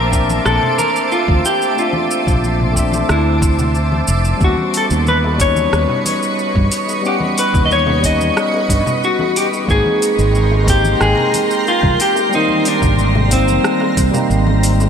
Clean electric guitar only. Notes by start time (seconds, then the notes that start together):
Already playing: A#4
0.46 A4
0.78 A#4
1.12 F4
1.46 G4
1.79 F4
3.11 E4
4.44 F#4
4.77 A4
5.08 B4
5.41 C#5
7.07 G4
7.39 B4
7.66 D#5
7.72 C#5
8.05 D#5
9.05 F#4
9.37 G4
9.71 G#4
10.70 G4
11.02 G#4
11.68 F4
12.01 G4
12.35 D#4
12.68 D4
13.33 C4